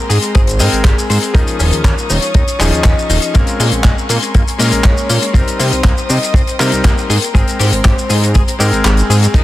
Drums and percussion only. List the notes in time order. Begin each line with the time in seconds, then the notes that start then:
0.10 open hi-hat, shaker
0.22 closed hi-hat, shaker
0.35 kick, closed hi-hat, shaker
0.47 closed hi-hat, shaker
0.60 open hi-hat, shaker
0.73 closed hi-hat, shaker
0.84 kick, clap, closed hi-hat, shaker
0.99 shaker
1.10 open hi-hat, shaker
1.23 closed hi-hat, shaker
1.35 kick, closed hi-hat, shaker
1.47 closed hi-hat, shaker
1.60 open hi-hat, shaker
1.73 closed hi-hat, shaker
1.84 kick, clap, closed hi-hat, shaker
1.98 shaker
2.10 open hi-hat, shaker
2.22 closed hi-hat, shaker
2.34 kick, closed hi-hat, shaker
2.48 closed hi-hat, shaker
2.60 clap, open hi-hat, shaker
2.72 closed hi-hat, shaker
2.84 kick, clap, closed hi-hat, shaker
2.99 shaker
3.10 open hi-hat, shaker
3.22 closed hi-hat, shaker
3.35 kick, closed hi-hat, shaker
3.47 closed hi-hat, shaker
3.60 open hi-hat, shaker
3.72 closed hi-hat, shaker
3.84 kick, clap, closed hi-hat, shaker
3.98 shaker
4.09 open hi-hat, shaker
4.23 closed hi-hat, shaker
4.34 kick, closed hi-hat, shaker
4.48 closed hi-hat, shaker
4.59 open hi-hat, shaker
4.72 closed hi-hat, shaker
4.84 kick, clap, closed hi-hat, shaker
4.97 shaker
5.09 open hi-hat, shaker
5.22 closed hi-hat, shaker
5.34 kick, closed hi-hat, shaker
5.48 closed hi-hat, shaker
5.59 open hi-hat, shaker
5.72 closed hi-hat, shaker
5.84 kick, clap, closed hi-hat, shaker
5.98 shaker
6.10 open hi-hat, shaker
6.23 closed hi-hat, shaker
6.34 kick, closed hi-hat, shaker
6.47 closed hi-hat, shaker
6.60 clap, open hi-hat, shaker
6.72 closed hi-hat, shaker
6.84 kick, clap, closed hi-hat, shaker
6.98 shaker
7.10 open hi-hat, shaker
7.22 closed hi-hat, shaker
7.35 kick, closed hi-hat, shaker
7.48 closed hi-hat, shaker
7.59 open hi-hat, shaker
7.72 closed hi-hat, shaker
7.85 kick, clap, closed hi-hat, shaker
7.98 shaker
8.10 open hi-hat, shaker
8.24 closed hi-hat, shaker
8.35 kick, closed hi-hat, shaker
8.48 closed hi-hat, shaker
8.60 open hi-hat, shaker
8.73 closed hi-hat, shaker
8.84 clap, closed hi-hat, shaker
8.97 closed hi-hat, shaker
9.10 open hi-hat, shaker
9.23 closed hi-hat, shaker
9.34 kick, closed hi-hat, crash, shaker